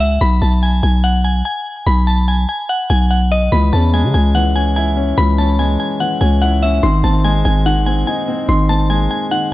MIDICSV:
0, 0, Header, 1, 4, 480
1, 0, Start_track
1, 0, Key_signature, 4, "minor"
1, 0, Tempo, 413793
1, 244, Time_signature, 4, 2, 24, 8
1, 11058, End_track
2, 0, Start_track
2, 0, Title_t, "Synth bell"
2, 0, Program_c, 0, 98
2, 3, Note_on_c, 0, 76, 88
2, 198, Note_off_c, 0, 76, 0
2, 245, Note_on_c, 0, 83, 107
2, 439, Note_off_c, 0, 83, 0
2, 484, Note_on_c, 0, 81, 81
2, 678, Note_off_c, 0, 81, 0
2, 727, Note_on_c, 0, 80, 90
2, 920, Note_off_c, 0, 80, 0
2, 965, Note_on_c, 0, 80, 87
2, 1159, Note_off_c, 0, 80, 0
2, 1203, Note_on_c, 0, 78, 93
2, 1398, Note_off_c, 0, 78, 0
2, 1444, Note_on_c, 0, 80, 80
2, 1638, Note_off_c, 0, 80, 0
2, 1685, Note_on_c, 0, 80, 84
2, 2135, Note_off_c, 0, 80, 0
2, 2164, Note_on_c, 0, 83, 99
2, 2358, Note_off_c, 0, 83, 0
2, 2403, Note_on_c, 0, 81, 86
2, 2597, Note_off_c, 0, 81, 0
2, 2645, Note_on_c, 0, 80, 81
2, 2839, Note_off_c, 0, 80, 0
2, 2886, Note_on_c, 0, 80, 74
2, 3079, Note_off_c, 0, 80, 0
2, 3124, Note_on_c, 0, 78, 93
2, 3318, Note_off_c, 0, 78, 0
2, 3363, Note_on_c, 0, 80, 87
2, 3557, Note_off_c, 0, 80, 0
2, 3602, Note_on_c, 0, 78, 75
2, 3797, Note_off_c, 0, 78, 0
2, 3846, Note_on_c, 0, 75, 93
2, 4039, Note_off_c, 0, 75, 0
2, 4085, Note_on_c, 0, 83, 109
2, 4279, Note_off_c, 0, 83, 0
2, 4326, Note_on_c, 0, 81, 84
2, 4519, Note_off_c, 0, 81, 0
2, 4566, Note_on_c, 0, 80, 89
2, 4759, Note_off_c, 0, 80, 0
2, 4804, Note_on_c, 0, 80, 84
2, 4998, Note_off_c, 0, 80, 0
2, 5044, Note_on_c, 0, 78, 94
2, 5238, Note_off_c, 0, 78, 0
2, 5285, Note_on_c, 0, 80, 85
2, 5479, Note_off_c, 0, 80, 0
2, 5525, Note_on_c, 0, 80, 87
2, 5976, Note_off_c, 0, 80, 0
2, 6005, Note_on_c, 0, 83, 111
2, 6198, Note_off_c, 0, 83, 0
2, 6245, Note_on_c, 0, 81, 85
2, 6439, Note_off_c, 0, 81, 0
2, 6486, Note_on_c, 0, 80, 85
2, 6679, Note_off_c, 0, 80, 0
2, 6725, Note_on_c, 0, 80, 78
2, 6919, Note_off_c, 0, 80, 0
2, 6963, Note_on_c, 0, 78, 87
2, 7158, Note_off_c, 0, 78, 0
2, 7201, Note_on_c, 0, 80, 83
2, 7397, Note_off_c, 0, 80, 0
2, 7443, Note_on_c, 0, 78, 89
2, 7637, Note_off_c, 0, 78, 0
2, 7685, Note_on_c, 0, 76, 86
2, 7879, Note_off_c, 0, 76, 0
2, 7923, Note_on_c, 0, 84, 103
2, 8118, Note_off_c, 0, 84, 0
2, 8165, Note_on_c, 0, 81, 85
2, 8359, Note_off_c, 0, 81, 0
2, 8404, Note_on_c, 0, 80, 88
2, 8598, Note_off_c, 0, 80, 0
2, 8643, Note_on_c, 0, 80, 84
2, 8838, Note_off_c, 0, 80, 0
2, 8885, Note_on_c, 0, 78, 94
2, 9079, Note_off_c, 0, 78, 0
2, 9122, Note_on_c, 0, 80, 80
2, 9317, Note_off_c, 0, 80, 0
2, 9364, Note_on_c, 0, 80, 80
2, 9815, Note_off_c, 0, 80, 0
2, 9846, Note_on_c, 0, 84, 102
2, 10039, Note_off_c, 0, 84, 0
2, 10084, Note_on_c, 0, 81, 89
2, 10278, Note_off_c, 0, 81, 0
2, 10322, Note_on_c, 0, 80, 84
2, 10517, Note_off_c, 0, 80, 0
2, 10564, Note_on_c, 0, 80, 76
2, 10758, Note_off_c, 0, 80, 0
2, 10804, Note_on_c, 0, 78, 95
2, 10998, Note_off_c, 0, 78, 0
2, 11058, End_track
3, 0, Start_track
3, 0, Title_t, "Grand piano"
3, 0, Program_c, 1, 0
3, 4085, Note_on_c, 1, 52, 90
3, 4323, Note_on_c, 1, 61, 83
3, 4336, Control_c, 1, 64, 127
3, 4565, Note_on_c, 1, 56, 87
3, 5026, Note_off_c, 1, 52, 0
3, 5043, Note_on_c, 1, 52, 92
3, 5267, Note_off_c, 1, 61, 0
3, 5284, Note_on_c, 1, 61, 80
3, 5524, Note_on_c, 1, 64, 92
3, 5745, Note_off_c, 1, 61, 0
3, 5763, Note_on_c, 1, 61, 84
3, 5764, Note_off_c, 1, 56, 0
3, 5985, Note_off_c, 1, 52, 0
3, 6003, Note_on_c, 1, 52, 96
3, 6227, Note_off_c, 1, 61, 0
3, 6245, Note_on_c, 1, 61, 89
3, 6483, Note_on_c, 1, 56, 82
3, 6724, Note_off_c, 1, 64, 0
3, 6948, Note_off_c, 1, 52, 0
3, 6965, Note_on_c, 1, 52, 88
3, 7187, Note_off_c, 1, 61, 0
3, 7205, Note_on_c, 1, 61, 82
3, 7445, Note_on_c, 1, 64, 95
3, 7667, Note_off_c, 1, 61, 0
3, 7684, Note_off_c, 1, 56, 0
3, 7684, Note_on_c, 1, 61, 91
3, 7924, Note_off_c, 1, 61, 0
3, 7924, Note_on_c, 1, 51, 95
3, 7925, Note_off_c, 1, 52, 0
3, 7925, Note_off_c, 1, 64, 0
3, 7939, Control_c, 1, 64, 0
3, 8111, Control_c, 1, 64, 127
3, 8165, Note_on_c, 1, 60, 83
3, 8405, Note_on_c, 1, 56, 91
3, 8867, Note_off_c, 1, 51, 0
3, 8885, Note_on_c, 1, 51, 98
3, 9107, Note_off_c, 1, 60, 0
3, 9125, Note_on_c, 1, 60, 82
3, 9365, Note_on_c, 1, 63, 92
3, 9588, Note_off_c, 1, 60, 0
3, 9605, Note_off_c, 1, 56, 0
3, 9605, Note_on_c, 1, 60, 86
3, 9827, Note_off_c, 1, 51, 0
3, 9844, Note_on_c, 1, 51, 90
3, 10067, Note_off_c, 1, 60, 0
3, 10085, Note_on_c, 1, 60, 79
3, 10325, Note_on_c, 1, 56, 92
3, 10564, Note_off_c, 1, 63, 0
3, 10786, Note_off_c, 1, 51, 0
3, 10803, Note_on_c, 1, 51, 78
3, 11025, Note_off_c, 1, 60, 0
3, 11058, Note_off_c, 1, 51, 0
3, 11058, Note_off_c, 1, 56, 0
3, 11058, End_track
4, 0, Start_track
4, 0, Title_t, "808-style bass"
4, 0, Program_c, 2, 38
4, 0, Note_on_c, 2, 37, 104
4, 215, Note_off_c, 2, 37, 0
4, 244, Note_on_c, 2, 35, 113
4, 474, Note_off_c, 2, 35, 0
4, 484, Note_on_c, 2, 35, 106
4, 945, Note_off_c, 2, 35, 0
4, 964, Note_on_c, 2, 35, 104
4, 1655, Note_off_c, 2, 35, 0
4, 2164, Note_on_c, 2, 35, 113
4, 2855, Note_off_c, 2, 35, 0
4, 3364, Note_on_c, 2, 35, 106
4, 4055, Note_off_c, 2, 35, 0
4, 4084, Note_on_c, 2, 37, 107
4, 4314, Note_off_c, 2, 37, 0
4, 4324, Note_on_c, 2, 40, 108
4, 4684, Note_on_c, 2, 49, 99
4, 4702, Note_off_c, 2, 40, 0
4, 4798, Note_off_c, 2, 49, 0
4, 4804, Note_on_c, 2, 37, 103
4, 5957, Note_off_c, 2, 37, 0
4, 6004, Note_on_c, 2, 37, 110
4, 6695, Note_off_c, 2, 37, 0
4, 7204, Note_on_c, 2, 37, 107
4, 7895, Note_off_c, 2, 37, 0
4, 7924, Note_on_c, 2, 32, 113
4, 8154, Note_off_c, 2, 32, 0
4, 8164, Note_on_c, 2, 32, 107
4, 8625, Note_off_c, 2, 32, 0
4, 8644, Note_on_c, 2, 32, 107
4, 9335, Note_off_c, 2, 32, 0
4, 9844, Note_on_c, 2, 32, 113
4, 10535, Note_off_c, 2, 32, 0
4, 11058, End_track
0, 0, End_of_file